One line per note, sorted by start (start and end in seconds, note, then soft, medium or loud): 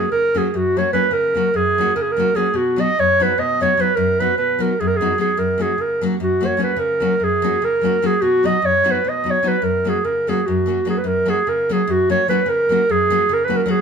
0.00 0.11 G#4 medium
0.12 0.44 C#3 soft
0.12 0.39 A#4 medium
0.34 0.47 F#3 medium
0.34 0.47 A#3 medium
0.34 0.47 C#4 medium
0.34 0.47 F#4 medium
0.34 0.58 G#4 medium
0.54 0.84 F#2 medium
0.54 0.79 F#4 medium
0.77 0.87 F#3 medium
0.77 0.87 A#3 soft
0.77 0.88 C#4 medium
0.77 0.88 F#4 medium
0.77 0.92 C#5 medium
0.93 1.05 F#3 medium
0.93 1.05 A#3 medium
0.93 1.05 C#4 medium
0.93 1.05 F#4 medium
0.93 1.14 B4 medium
1.11 1.43 C#3 medium
1.11 1.57 A#4 medium
1.34 1.47 F#3 medium
1.34 1.47 A#3 soft
1.34 1.47 C#4 soft
1.34 1.48 F#4 medium
1.54 1.86 F#2 medium
1.54 1.95 G#4 loud
1.78 1.90 F#3 medium
1.78 1.90 A#3 medium
1.78 1.90 C#4 medium
1.78 1.91 F#4 medium
1.96 2.26 C#3 medium
1.96 2.03 A#4 medium
2.02 2.13 G#4 medium
2.12 2.37 A#4 medium
2.17 2.28 F#3 medium
2.17 2.29 A#3 medium
2.17 2.29 C#4 medium
2.17 2.30 F#4 medium
2.35 2.47 F#3 medium
2.35 2.47 A#3 medium
2.35 2.47 C#4 medium
2.35 2.47 F#4 medium
2.35 2.57 G#4 medium
2.54 2.86 B2 medium
2.54 2.82 F#4 medium
2.76 2.88 F#3 medium
2.76 2.89 B3 medium
2.76 2.89 D#4 soft
2.76 2.89 F#4 medium
2.81 3.01 D#5 loud
2.99 3.30 F#2 medium
2.99 3.24 C#5 loud
3.20 3.31 F#3 medium
3.20 3.31 B3 medium
3.20 3.32 D#4 medium
3.20 3.32 F#4 medium
3.20 3.41 B4 medium
3.38 3.68 B2 medium
3.38 3.60 D#5 medium
3.61 3.71 F#3 medium
3.61 3.72 B3 medium
3.61 3.72 D#4 soft
3.61 3.72 F#4 medium
3.61 3.82 C#5 medium
3.77 3.89 F#3 medium
3.77 3.90 B3 medium
3.77 3.90 D#4 medium
3.77 3.90 F#4 medium
3.77 3.97 B4 medium
3.95 4.28 F#2 medium
3.95 4.21 A#4 medium
4.20 4.31 F#3 medium
4.20 4.31 B3 medium
4.20 4.31 D#4 soft
4.20 4.32 F#4 medium
4.20 4.37 B4 medium
4.38 4.70 B2 medium
4.38 4.63 B4 medium
4.59 4.72 F#3 medium
4.59 4.72 B3 medium
4.59 4.73 D#4 medium
4.59 4.72 F#4 medium
4.59 4.81 A#4 medium
4.80 5.10 F#2 medium
4.80 4.89 G#4 medium
4.87 4.98 A#4 medium
4.96 5.20 G#4 medium
5.01 5.12 F#3 medium
5.01 5.12 B3 medium
5.01 5.13 D#4 medium
5.01 5.13 F#4 medium
5.18 5.30 F#3 medium
5.18 5.31 B3 soft
5.18 5.31 D#4 medium
5.18 5.31 F#4 medium
5.18 5.40 G#4 medium
5.37 5.69 F#2 medium
5.37 5.63 A#4 medium
5.58 5.71 F#3 medium
5.58 5.72 A#3 soft
5.58 5.72 C#4 soft
5.58 5.72 F#4 medium
5.58 5.82 G#4 medium
5.78 6.11 C#3 soft
5.78 6.03 A#4 medium
6.01 6.14 F#3 medium
6.01 6.14 A#3 medium
6.01 6.14 C#4 medium
6.01 6.15 F#4 medium
6.20 6.50 F#2 medium
6.20 6.47 F#4 medium
6.41 6.53 F#3 medium
6.41 6.53 A#3 medium
6.41 6.54 C#4 soft
6.41 6.54 F#4 medium
6.46 6.62 C#5 medium
6.57 6.70 F#3 medium
6.57 6.71 A#3 medium
6.57 6.71 C#4 medium
6.57 6.72 F#4 medium
6.63 6.81 B4 medium
6.76 7.10 C#3 medium
6.76 7.25 A#4 medium
7.00 7.13 F#3 medium
7.00 7.13 A#3 soft
7.00 7.14 C#4 medium
7.00 7.14 F#4 medium
7.20 7.52 F#2 medium
7.20 7.66 G#4 medium
7.42 7.55 F#3 medium
7.42 7.56 A#3 medium
7.42 7.56 C#4 medium
7.42 7.56 F#4 medium
7.62 7.92 C#3 medium
7.62 8.08 A#4 medium
7.82 7.94 F#3 medium
7.82 7.95 A#3 medium
7.82 7.95 C#4 medium
7.82 7.96 F#4 medium
8.02 8.14 F#3 medium
8.02 8.14 A#3 medium
8.02 8.14 C#4 medium
8.02 8.14 F#4 medium
8.02 8.23 G#4 medium
8.22 8.53 B2 medium
8.22 8.47 F#4 medium
8.43 8.56 F#3 medium
8.43 8.55 B3 medium
8.43 8.56 D#4 soft
8.43 8.56 F#4 medium
8.43 8.67 D#5 medium
8.62 8.94 F#2 medium
8.62 8.93 C#5 loud
8.84 8.97 F#3 medium
8.84 8.97 B3 medium
8.84 8.97 D#4 medium
8.84 8.98 F#4 medium
8.91 9.10 B4 medium
9.05 9.34 B2 medium
9.09 9.32 D#5 medium
9.24 9.36 F#3 medium
9.24 9.37 B3 soft
9.24 9.37 D#4 medium
9.24 9.37 F#4 medium
9.30 9.50 C#5 medium
9.43 9.55 F#3 medium
9.43 9.55 B3 soft
9.43 9.55 D#4 medium
9.43 9.55 F#4 medium
9.48 9.65 B4 medium
9.62 9.94 F#2 medium
9.62 9.90 A#4 medium
9.84 9.97 F#3 medium
9.84 9.97 A#3 medium
9.84 9.97 C#4 medium
9.84 9.98 F#4 medium
9.89 10.06 G#4 medium
10.05 10.36 C#3 medium
10.05 10.30 A#4 medium
10.27 10.39 F#3 medium
10.27 10.40 A#3 medium
10.27 10.40 C#4 medium
10.27 10.40 F#4 medium
10.27 10.48 G#4 medium
10.46 10.77 F#2 medium
10.46 10.85 F#4 medium
10.66 10.78 F#3 medium
10.66 10.78 A#3 medium
10.66 10.79 C#4 soft
10.66 10.79 F#4 medium
10.85 10.96 F#3 medium
10.85 10.97 A#3 medium
10.85 10.97 C#4 soft
10.85 10.98 F#4 medium
10.90 10.99 G#4 medium
10.98 11.08 B4 medium
11.04 11.36 F#2 medium
11.04 11.31 A#4 loud
11.26 11.38 F#3 medium
11.26 11.38 A#3 medium
11.26 11.38 C#4 soft
11.26 11.39 F#4 medium
11.26 11.50 G#4 medium
11.47 11.78 C#3 medium
11.47 11.74 A#4 medium
11.69 11.81 F#3 medium
11.69 11.81 A#3 medium
11.69 11.81 C#4 medium
11.69 11.82 F#4 medium
11.69 11.92 G#4 medium
11.88 12.17 F#2 medium
11.88 12.10 F#4 medium
12.10 12.20 F#3 medium
12.10 12.20 A#3 medium
12.10 12.21 C#4 medium
12.10 12.21 F#4 medium
12.10 12.26 C#5 medium
12.28 12.39 F#3 medium
12.28 12.39 A#3 medium
12.28 12.40 C#4 medium
12.28 12.40 F#4 medium
12.28 12.50 B4 medium
12.46 12.77 C#3 medium
12.46 12.93 A#4 medium
12.69 12.80 F#3 medium
12.69 12.81 A#3 medium
12.69 12.81 C#4 medium
12.69 12.82 F#4 medium
12.89 13.20 F#2 medium
12.89 13.35 G#4 loud
13.10 13.22 F#3 medium
13.10 13.22 A#3 medium
13.10 13.22 C#4 medium
13.10 13.23 F#4 medium
13.29 13.58 C#3 medium
13.33 13.46 A#4 medium
13.44 13.60 F#3 medium
13.44 13.57 B4 medium
13.49 13.60 A#3 medium
13.49 13.61 C#4 medium
13.49 13.61 F#4 medium
13.56 13.63 A#4 medium
13.63 13.78 F#3 medium
13.63 13.78 A#3 medium
13.63 13.78 C#4 medium
13.63 13.72 A#4 medium
13.68 13.79 F#4 medium
13.68 13.81 G#4 medium